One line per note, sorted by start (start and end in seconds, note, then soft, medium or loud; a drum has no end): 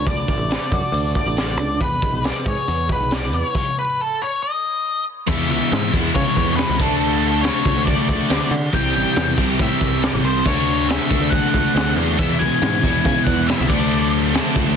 0.00 0.26 A3 medium
0.00 0.48 D4 medium
0.06 0.24 D2 loud
0.06 1.15 D3 medium
0.06 1.12 D5 loud
0.06 kick loud
0.06 open hi-hat medium
0.28 1.14 A3 medium
0.28 kick medium
0.28 open hi-hat soft
0.38 0.56 A1 medium
0.49 0.92 D4 medium
0.49 snare loud
0.49 open hi-hat medium
0.71 0.80 F#2 medium
0.71 1.81 F#4 medium
0.71 kick medium
0.71 open hi-hat medium
0.92 1.19 D2 medium
0.92 1.58 D4 medium
0.92 open hi-hat medium
1.15 1.81 A3 medium
1.15 1.81 D5 loud
1.15 kick medium
1.15 open hi-hat medium
1.26 1.57 A1 medium
1.37 1.81 D3 medium
1.37 snare medium
1.37 open hi-hat medium
1.57 1.81 C#2 medium
1.57 1.81 D4 medium
1.57 open hi-hat medium
1.81 2.90 E2 medium
1.81 1.98 E2 medium
1.81 2.22 B4 medium
1.81 kick loud
1.81 open hi-hat medium
2.02 2.88 G#3 medium
2.02 kick medium
2.02 open hi-hat soft
2.12 2.30 B1 medium
2.24 2.66 B3 medium
2.24 2.47 D5 medium
2.24 snare loud
2.24 open hi-hat medium
2.46 2.55 G#2 medium
2.46 3.55 G#4 medium
2.46 2.88 C#5 medium
2.46 kick medium
2.46 open hi-hat soft
2.68 2.94 E2 loud
2.68 3.32 B3 medium
2.68 open hi-hat medium
2.89 3.55 G#3 medium
2.89 3.13 B4 medium
2.89 kick medium
2.89 open hi-hat soft
3.00 3.33 B1 medium
3.11 3.55 E3 medium
3.11 3.35 D5 medium
3.11 snare loud
3.11 open hi-hat medium
3.33 3.42 E2 medium
3.33 3.55 B3 medium
3.33 3.75 C#5 medium
3.33 open hi-hat soft
3.55 kick loud
3.55 crash medium
3.79 4.00 B4 medium
4.01 4.22 A4 medium
4.22 4.41 C#5 medium
4.42 5.03 D#5 medium
5.27 6.78 E2 medium
5.27 5.50 E2 medium
5.27 6.78 B2 loud
5.27 5.91 E3 medium
5.27 5.92 G#3 medium
5.27 5.92 B3 medium
5.27 5.91 E4 loud
5.27 5.50 E5 loud
5.27 kick loud
5.27 crash loud
5.27 crash medium
5.50 5.59 C#2 medium
5.50 5.91 E5 loud
5.50 crash medium
5.72 5.89 G#2 medium
5.72 snare loud
5.72 crash medium
5.92 6.11 E2 medium
5.92 6.79 E3 medium
5.92 6.79 G#3 medium
5.92 6.79 B3 medium
5.92 6.78 E4 medium
5.92 kick medium
5.92 crash medium
6.15 6.24 C#3 loud
6.15 6.56 C#5 medium
6.15 kick loud
6.15 crash medium
6.27 snare soft
6.37 6.63 E2 medium
6.37 kick medium
6.37 crash medium
6.56 6.80 B4 medium
6.56 snare loud
6.56 crash medium
6.69 6.78 C#2 medium
6.77 7.49 D2 medium
6.77 7.43 D3 medium
6.77 7.44 A3 medium
6.77 6.96 A4 medium
6.77 kick loud
6.77 crash medium
6.81 7.44 D4 medium
6.81 7.45 F#4 loud
6.97 7.39 A4 medium
7.01 crash medium
7.22 crash medium
7.41 8.51 D3 medium
7.41 7.85 C#5 loud
7.41 snare loud
7.41 crash medium
7.46 8.52 A3 medium
7.46 8.52 D4 loud
7.46 8.53 F#4 loud
7.65 7.75 C#2 medium
7.65 kick medium
7.65 crash medium
7.76 7.94 D2 medium
7.86 8.47 D5 loud
7.86 kick loud
7.86 crash medium
8.08 8.17 C#2 loud
8.08 kick medium
8.08 crash medium
8.30 8.39 D2 loud
8.30 8.51 D3 medium
8.30 8.51 A3 medium
8.30 8.52 D4 medium
8.30 snare loud
8.30 crash medium
8.51 8.69 D3 medium
8.51 crash medium
8.73 8.96 C2 loud
8.73 9.37 C3 medium
8.73 9.37 E3 medium
8.73 9.37 G3 loud
8.73 9.37 C4 medium
8.73 9.36 G4 loud
8.73 8.94 G5 loud
8.73 kick loud
8.73 crash medium
8.95 9.04 A1 medium
8.95 9.36 G5 loud
8.95 crash medium
9.16 9.34 E2 medium
9.16 snare loud
9.16 crash medium
9.37 9.55 C2 medium
9.37 10.46 C3 medium
9.37 10.44 E3 medium
9.37 10.45 G3 medium
9.37 10.45 C4 medium
9.37 10.44 G4 medium
9.37 kick medium
9.37 crash medium
9.59 9.68 A2 medium
9.59 10.01 E5 medium
9.59 kick loud
9.59 crash medium
9.81 10.07 C2 medium
9.81 kick medium
9.81 crash medium
10.03 10.10 D5 medium
10.03 snare loud
10.03 crash medium
10.13 10.22 A1 medium
10.23 10.41 C2 loud
10.23 10.46 G3 medium
10.23 10.45 C4 medium
10.23 10.46 C5 medium
10.23 crash medium
10.27 10.45 C3 medium
10.45 10.98 D2 loud
10.45 11.09 D3 medium
10.45 11.10 A3 loud
10.45 11.09 D4 medium
10.45 11.08 F#4 loud
10.45 10.86 C#5 medium
10.45 kick loud
10.45 crash medium
10.68 crash medium
10.89 11.30 E5 medium
10.89 snare loud
10.89 crash medium
11.09 11.20 C#2 medium
11.09 12.18 D3 medium
11.09 12.18 A3 medium
11.09 12.17 D4 medium
11.09 12.17 F#4 medium
11.09 kick medium
11.09 crash medium
11.21 11.38 D2 medium
11.30 11.92 F#5 loud
11.30 kick loud
11.30 crash medium
11.45 snare soft
11.54 11.63 C#2 loud
11.54 kick medium
11.54 crash medium
11.75 11.95 D2 medium
11.75 snare loud
11.75 crash medium
11.96 12.16 E2 medium
11.96 12.18 D3 medium
11.96 12.18 A3 medium
11.96 12.17 D4 medium
11.96 crash medium
12.17 13.68 E2 medium
12.17 12.42 E2 loud
12.17 13.68 B2 loud
12.17 12.82 E3 medium
12.17 12.83 G#3 loud
12.17 12.83 B3 medium
12.17 12.82 E4 loud
12.17 12.41 E5 loud
12.17 kick loud
12.17 crash loud
12.39 12.49 C#2 medium
12.39 13.00 G#5 loud
12.39 crash medium
12.62 12.79 G#2 loud
12.62 snare loud
12.62 crash medium
12.83 13.01 E2 medium
12.83 13.69 E3 medium
12.83 13.69 G#3 medium
12.83 13.69 B3 medium
12.83 13.68 E4 medium
12.83 kick medium
12.83 crash medium
13.01 13.23 G#5 loud
13.01 kick loud
13.01 crash medium
13.05 13.14 C#3 loud
13.17 snare soft
13.24 13.52 E2 medium
13.24 13.46 F#5 loud
13.24 kick medium
13.24 crash medium
13.47 13.69 E5 medium
13.47 snare loud
13.47 crash medium
13.60 13.68 C#2 medium
13.69 14.38 D2 loud
13.69 14.32 D3 medium
13.69 14.33 F#3 medium
13.69 14.34 A3 loud
13.69 14.34 D4 loud
13.69 14.10 D5 medium
13.69 kick loud
13.69 crash loud
13.91 crash medium
14.13 crash medium
14.33 14.76 D3 medium
14.33 14.76 F#3 medium
14.33 14.76 A3 loud
14.33 14.76 D4 loud
14.33 snare loud
14.33 crash medium
14.56 14.64 C#2 medium
14.56 kick medium
14.56 crash medium
14.66 14.76 D2 medium